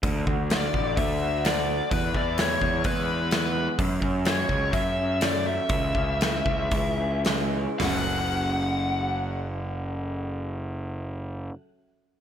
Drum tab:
HH |o-o-o-o-|o-o-o-o-|o-o-o-o-|o-o-o-o-|
SD |--o---o-|--o---o-|--o---o-|--o---o-|
FT |--------|--------|--------|--------|
BD |oo-oo---|oo-oo---|oo-oo---|oo-oo---|

HH |o-------|--------|
SD |o-------|--------|
FT |o-------|--------|
BD |--------|--------|